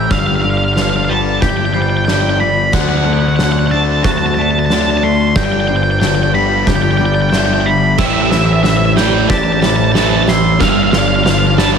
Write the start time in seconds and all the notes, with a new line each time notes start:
Already playing: E3 G3 G4 E6
0.10 G1 G2 D3 G3 F4 D5 F5, kick, snare
0.19 F5
0.27 F5
0.36 F5
0.42 G2 D3 D5 F5
0.50 F5
0.58 F5
0.65 F5
0.73 B4 F5, snare
0.77 G2 D3 F3
0.82 F5
0.90 F5
0.96 F5
1.05 F5
1.09 G2 D3 G3 A5
1.42 G1 G2 D3 G4 G5, kick, snare
1.49 G5
1.57 G5
1.65 G5
1.74 G2 D3 G3 C5 G5
1.82 G5
1.90 G5
1.97 G5
2.05 G2 F3 D5 G5, snare
2.09 D3 G3
2.13 G5
2.21 G5
2.29 G5
2.40 G2 D3 G3 B5
2.72 D2 D3 A3 C4 D4 F#4 F#5, kick, snare, crash
2.81 F#5
2.89 F#5
2.97 F#5
3.05 D3 A3 D5 F#5
3.13 F#5
3.20 F#5
3.28 F#5
3.36 F#5, snare
3.41 D3 A3 F#5
3.52 F#5
3.59 F#5
3.67 F#5
3.71 D3 A3 D4 C5 A5
4.03 D2 D3 A3 F#4 A5, kick, snare
4.11 A5
4.18 A5
4.26 A5
4.34 D5 A5
4.39 D3 A3 A5
4.51 A5
4.59 A5
4.66 A5
4.70 D3 A3 D4, snare
4.74 A5
4.82 A5
4.90 A5
4.97 A5
5.03 D3 A3 D5 C6
5.36 G1 G2 D3 G3 F4 D5 G5, kick, snare
5.45 G5
5.52 G5
5.60 G5
5.67 G2 D3 C5 G5
5.76 G5
5.83 G5
5.91 G5
6.00 G2 D3 F3 B4 G5, snare
6.07 G5
6.15 G5
6.23 G5
6.34 G2 D3 G3 B5
6.67 G1 G2 D3 G4 G5, kick, snare
6.75 G5
6.82 G5
6.91 G5
6.97 G2 D3 G3 D5 G5
7.06 G5
7.15 G5
7.22 G5
7.30 G2 D3 F3 E5 G5, snare
7.34 G3 G5
7.46 G5
7.54 G5
7.61 G5
7.66 G2 D3 G3 B5
7.98 A1 A2 E3 A3 G4 C5 E5 G5, kick, snare, crash
8.06 E5
8.14 E5
8.22 E5
8.30 A2 E3 E5, snare
8.37 E5
8.46 E5
8.53 E5
8.63 A2 E3 E5, snare
8.69 E5
8.77 E5
8.85 E5
8.97 A2 E3 G3 A3 D5 G5, snare
9.30 A1 A2 E3 G4 A5, kick, snare
9.38 A5
9.44 A5
9.52 A5
9.60 A2 E3 G3 E5 A5, snare
9.70 A5
9.76 A5
9.84 A5
9.92 A2 A5, snare
9.96 E3 A3 A5
10.08 A5
10.16 A5
10.23 A5
10.28 A2 E3 G3 C6 E6, snare
10.60 G1 G2 D3 G3 F4 D5 F5, kick, snare
10.69 F5
10.76 F5
10.83 F5
10.92 G2 D3 D5 F5, snare
10.99 F5
11.08 F5
11.15 F5
11.24 G2 D3 F3 B4 F5, snare
11.31 F5
11.39 F5
11.47 F5
11.58 G2 D3 G3 A5, snare